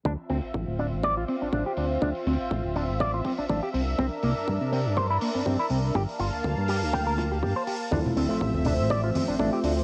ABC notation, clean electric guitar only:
X:1
M:4/4
L:1/16
Q:"Swing 16ths" 1/4=122
K:Dm
V:1 name="Clean electric guitar"
D z C z3 D z d F C D D G D z | D z C z3 D z d F C D D G C z | C z B, z3 C z c E B, C C E C z | G z F z3 G z g B F G G c G z |
D z C z3 D z d F C D D G D z |]